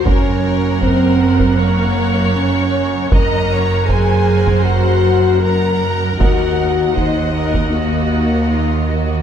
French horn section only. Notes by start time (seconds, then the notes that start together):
0.05 C#4
0.80 C4
1.56 A#3
2.33 C#4
3.11 A#4
3.85 G#4
4.64 F#4
5.41 A#4
6.17 F#4
6.94 D#4
7.71 A#3